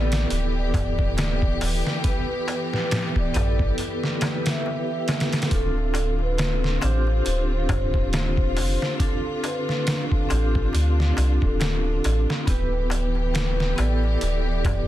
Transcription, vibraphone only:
Already playing: B3 E4 G4 A4 B4
2.04 B3 E4 G4
2.08 B4
3.34 B3 E4 G4 A4
4.20 B3 E4 G4
4.25 B4
5.50 C4 D4 F4
5.55 A4
6.81 C4 D4 F4
6.86 G4
8.98 C4 D4 F4
9.03 A4
10.29 C4 D4 F4
10.33 G4
12.46 B3 E4 G4
12.51 B4
13.76 B3 E4 G4
13.81 A4

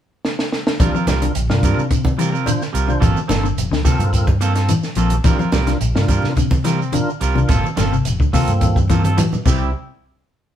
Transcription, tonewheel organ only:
0.79 D4 F4 A#4
1.21 D4 F4 A#4
1.49 D4 F4 A#4
2.46 D4 F4 C5
2.88 D4 F4 C5
3.84 C4 F4 A4 A#4
5.25 D4 F4 A#4
5.67 D4 F4 A#4
5.95 D4 F4 A#4
6.93 D4 F4 A#4
7.35 D4 F4 A#4
8.33 A#3 C4 F4 A4
9.46 C4 E4 G4

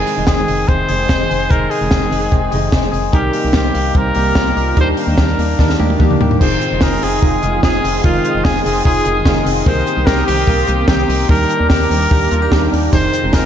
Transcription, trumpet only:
Already playing: G#4
0.27 G#4
0.68 C5
1.50 A#4
1.70 G#4
3.14 G4
3.56 G4
3.97 A#4
4.80 C5
5.01 A#4
6.40 C5
6.82 A#4
7.03 G#4
7.63 G#4
8.04 F4
8.44 G#4
8.64 G#4
8.85 G#4
9.67 C5
10.06 A#4
10.27 G4
10.88 G4
11.30 A#4
11.70 A#4
12.93 C5
13.34 A#4

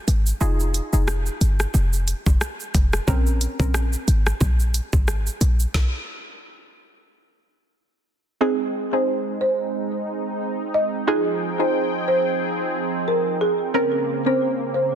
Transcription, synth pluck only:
0.41 D#4 F4 G#4
0.93 D#4 F4 G#4
3.07 C4 C#4 A#4
3.59 C4 C#4 A#4
8.41 C4 D#4 G#4
8.93 C4 D#4 G#4
11.07 D#4 F4 G#4
11.59 D#4 F4 G#4
13.74 C4 C#4 A#4
14.26 C4 C#4 A#4

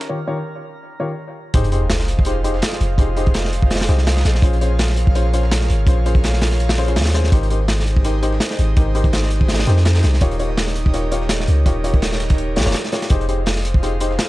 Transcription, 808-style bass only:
1.54 F1
2.81 F1
2.98 F1
3.89 C2
4.25 A#1
4.42 A#1
5.07 A#1
5.70 G#1
5.87 A#1
6.96 D#2
7.32 G#1
8.59 G#1
8.77 G#1
9.67 F2
10.04 C2
10.22 D#1
10.86 D#1
11.48 C#2
11.66 D#1
12.57 C#2
12.66 F1
13.10 F1

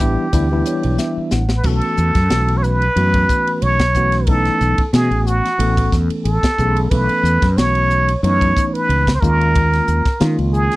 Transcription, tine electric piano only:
0.00 E3 G3 B3 D4 E4
0.33 E3 G3 B3 D4 E4
0.52 E3 G3 B3 D4 E4
0.67 C#5
0.99 E5
1.32 F#5
1.64 E3 A3 B3 C#4 F#4
2.29 E3 A3 B3 C#4 F#4
2.96 E3 A3 B3 C#4 F#4
3.95 E3 A3 B3 C#4 F#4
4.27 E3 A3 B3 C#4 D#4
4.94 E3 A3 B3 C#4 F#4
5.59 E3 A3 B3 C#4 A4
6.58 E3 A3 B3 C#4 G#4
6.91 E3 A3 B3 C#4 A4
7.58 E3 A3 B3 C#4 F#4
8.23 E3 A3 B3 C#4 D#4
9.22 D#3 G#3 A#3 C#4 F4
10.20 D#3 G#3 A#3 C#4 F4

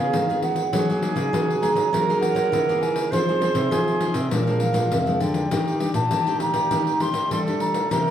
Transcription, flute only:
Already playing: G#4
0.73 G#4
1.93 A#4
3.11 C5
3.71 G#4
4.30 A#4
5.51 G4
7.32 A4
7.91 A#4

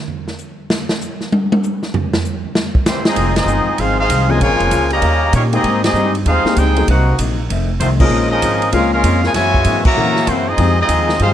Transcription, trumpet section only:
2.87 A#3 E4 G4 C5
3.07 C4 F4 G#4 D#5
3.38 C4 F4 G#4 D#5
3.80 D#4 G#4 C5 F5
4.00 D#4 G#4 C5 F5
4.30 F4 C5 D#5 G#5
4.42 F4 A#4 C#5 G#5
4.93 G4 C#5 D#5 A#5
5.35 A#3 D#4 G4 C#5
5.54 C4 G4 G#4 D#5
5.84 C4 G4 G#4 D#5
6.27 D#4 G#4 C5 F5
6.57 D#4 G#4 C5 G5
6.89 D#4 A#4 C5 F#5
7.80 A3 D#4 F4 C5
8.00 C#4 G#4 A#4 D#5
8.31 C#4 G#4 A#4 D#5
8.73 C#4 G#4 A#4 F5
8.93 C#4 G#4 A#4 F5
9.25 F4 A#4 C#5 G#5
9.35 F#4 C#5 E5 G#5
9.86 F#4 C#5 E5 A#5
10.29 A#3 E4 F#4 C5
10.49 C4 F4 G#4 D#5
10.81 C4 F4 G#4 D#5
11.22 D#4 G#4 C5 F5

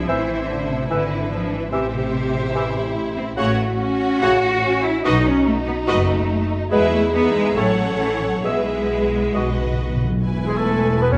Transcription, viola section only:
Already playing: E4
0.08 C5
0.90 B4
1.72 G4 C5
3.38 F#4 C#5
4.22 F#4 C#5
5.05 F#4 B4
5.88 F#4 B4
6.72 G#4 B4
7.14 G#4 B4
7.57 A4 C#5
8.45 G#4 B4
9.34 F#4 B4
10.24 E4 B4
11.13 C#4 A4

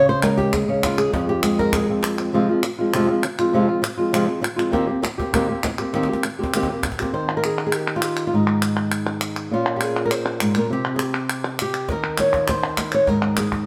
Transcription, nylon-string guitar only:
Already playing: C#3
0.09 C5
0.23 G#3 A#4
0.37 G4
0.54 G#4
0.68 C#3 C#4
0.84 F4
0.98 G#4
1.13 F2 G#4
1.29 G4
1.44 G#3 G#4
1.59 A#4
1.73 G#4
1.89 F2 C4
2.19 C4
2.32 F2 C3 F3 G#3 C4 F4
2.49 F3 G#3 C4 F4
2.63 muted nylon-string guitar stroke
2.79 F3 G#3 C4 F4
2.93 F2 C3 F3 G#3 C4 F4
3.09 F3 G#3 C4 F4
3.24 muted nylon-string guitar stroke
3.39 F3 G#3 C4 F4
3.53 F2 C3 F3 G#3 C4 F4
3.68 F3 G#3 C4 F4
3.82 muted nylon-string guitar stroke
3.97 F3 G#3 C4 F4
4.12 F2 C3 F3 G#3 C4 F4
4.27 F3 G#3 C4 F4
4.41 muted nylon-string guitar stroke
4.56 F3 G#3 C4 F4
4.71 D#3 A#3 C4 G4
4.87 A#3 C4 G4
5.02 muted nylon-string guitar stroke
5.18 A#3 C4 G4
5.33 D#3 A#3 C4 G4
5.48 A#3 C4 G4
5.63 muted nylon-string guitar stroke
5.79 A#3 C4 G4
5.93 D#3 A#3 C4 G4
6.09 A#3 C4 G4
6.25 muted nylon-string guitar stroke
6.39 A#3 C4 G4
6.54 D#3 A#3 C4 G4
6.70 A#3 G4
6.84 muted nylon-string guitar stroke
7.00 A#3 C4 G4
7.13 D#3 C5
7.29 F4
7.37 A#4
7.45 G#4
7.67 G#4
7.74 G4
7.96 F4
8.04 G4
8.27 F4
8.33 G#2 D#4
9.51 A#2 A#3 C#4 F4
9.76 G4
9.83 G#4
10.06 A#4
10.11 C5
10.41 G#2
10.56 A#2 A#4
10.70 C3 G4
10.96 G#4
11.03 G4
11.62 G4
11.88 D#3 A#4
12.20 C#5
12.35 F4
12.49 C5
12.94 C#5
13.08 G#2 A#4
13.38 G#4

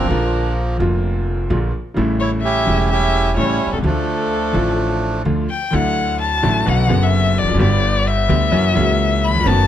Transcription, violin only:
Already playing: A#4
2.20 C#5
2.42 E5
2.91 E5
3.37 C#5
3.73 A4
3.84 A4
5.50 G5
5.75 F#5
6.21 A5
6.68 F#5
7.03 E5
7.38 D5
7.62 D5
8.07 E5
9.25 B5
9.47 A5

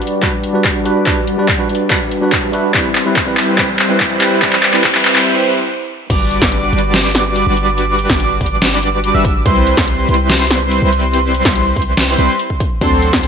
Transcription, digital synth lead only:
6.10 D6
6.42 D6
6.73 D6
7.47 D6
8.10 D6
8.41 D6
9.14 E6
9.46 C6
9.77 C6
10.09 C6
10.82 C6
11.45 C6
11.76 C6
12.18 C6
12.81 C6
13.13 C6

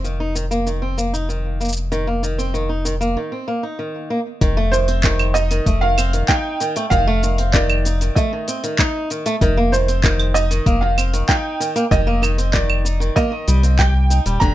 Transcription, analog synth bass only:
Already playing: F1
4.41 F1
5.66 F1
6.91 F1
9.41 F1
10.66 F1
11.91 F1
13.48 C2
14.26 D#1
14.41 F1

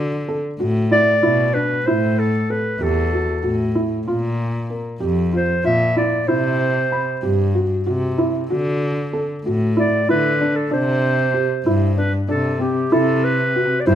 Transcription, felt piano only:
0.29 A4
0.60 F#4
0.91 E4
1.23 E4
1.55 D4
1.88 E4
2.50 A4
2.81 G4
3.13 F#4
3.43 F#4
3.75 E4
4.08 F4
4.70 A#4
5.00 G4
5.33 F4
5.64 F4
5.97 E4
6.28 E4
6.92 B5
7.23 G4
7.55 F#4
7.86 F#4
8.18 E4
8.50 F#4
9.13 A4
9.46 F#4
9.77 E4
10.09 E4
10.41 D4
10.71 D4
11.34 G4
11.66 E4
11.97 D4
12.29 D4
12.60 C4
12.92 E4
13.56 F#4
13.87 E4

